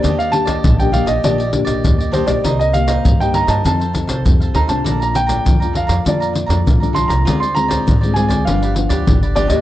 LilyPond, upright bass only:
\new Staff \with { instrumentName = "Upright bass" } { \clef bass \time 4/4 \key ees \lydian \tempo 4 = 100 ees,4 bes,,8. bes,,16 bes,,8. bes,,16 ees,8. bes,,16 | c,4 g,8. g,16 f,8. c,16 f,8 d,16 c,16 | bes,,4 f,8. f,16 f,8. f,16 bes,,8. c,16 | d,4 aes,8. d,16 g,,8. d,16 g,,8. d,16 | }